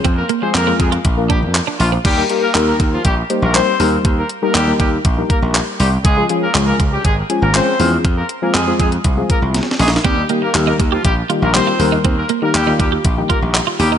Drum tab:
CC |------------------------------------------------|x-----------------------------------------------|------------------------------------------------|------------------------------------------------|
HH |x-----x-----x-----x--x--x-----x-----x-----o-----|x-----x-----x-----x-----x-----x-----x-----o-----|x-----x-----x-----x-----x-----x-----x-----o-----|x-----x-----x-----x-----x-----x-----x-----o-----|
CP |------------x-----------------------x-----------|------------x-----------------------x-----------|------------x-----------------------x-----------|------------x-----------------------x-----------|
SD |------------------------------------------------|------------------------------------------------|------------------------------------------------|------------------------------------------------|
BD |o-----------------o-----o-----o-----------------|o-----------------o-----o-----------------------|o-----------------o-----o-----o-----------------|o-----------------o-----o-----------------------|

CC |------------------------------------------------|------------------------------------------------|------------------------------------------------|
HH |x-----x-----x-----x--x--x-----x-----x-----o-----|x-----x-----x-----x-----x-----x-----x-----o-----|x-----x-----x-----x-----x-----x-----x-----o-----|
CP |------------x-----------------------------------|------------x-----------------------x-----------|------------x-----------------------x-----------|
SD |------------------------------------o-o-o-o-o-o-|------------------------------------------------|------------------------------------------------|
BD |o-----------------o-----o-----o-----------------|o-----------------o-----o-----------------------|o-----------------o-----o-----o-----------------|